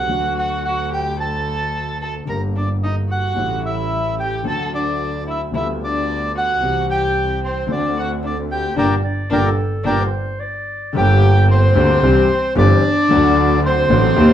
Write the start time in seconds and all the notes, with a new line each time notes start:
Already playing: F#4 F#5
0.07 D2 D3 F#3 A3
0.11 F#4
0.37 F#4 F#5
0.65 F#4 F#5
0.92 G4 G5
1.20 A4 A5
2.02 A4 A5
2.25 G1 G2 D3 G3 A#3 A#4
2.29 G4 A#5
2.56 D4 D5
2.83 D#4 D#5
3.10 F#4 F#5
3.35 A1 A2 C#3 G3 A3 E4
3.65 E4 E5
4.20 G4 G5
4.43 D2 D3 F#3 A3 A4
4.47 F#4 A5
4.74 D4 D5
5.27 E4 E5
5.53 D2 D3 G3 B3 E4 F4 E5
5.82 D4 D5
6.35 F#4 F#5
6.59 C2 C3 E3 G3 C4 G4
6.89 G4 G5
7.43 C4 C5
7.67 D2 D3 A3 C4 F#4
7.71 D4 D5
7.98 F#4 F#5
8.23 D4 D5
8.52 G4 G5
8.76 G1 A#2 D3 G3 D4 A#4 D5 G5
9.04 D5
9.30 G1 A#2 D3 G3 D4 A#4 D5 G5
9.45 A4
9.84 G1 A#2 D3 G3 D4 A#4 D5 G5
10.00 C5
10.40 D5
10.93 G1 G2 D3 G3 A#3 G4
10.98 G5
11.50 C4 C5
11.75 D2 D3 G3 A#3 G4
12.02 C2 C3 E3 G3 C4 G4
12.55 G1 G2 E3 G3 C4 D4 G4 D5
13.08 D2 D3 F#3 A3
13.12 F#4
13.65 C4 C5
13.90 A1 A2 D3 F#3 A3 F#4
14.16 D#2 D#3 G3 A#3 G4